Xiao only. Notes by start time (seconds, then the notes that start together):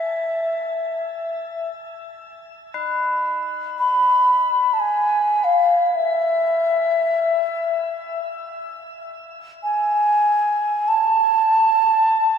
Already playing: E5
3.79 B5
4.73 A5
4.79 G#5
5.44 F5
5.86 F5
5.95 E5
9.63 G#5
10.88 A5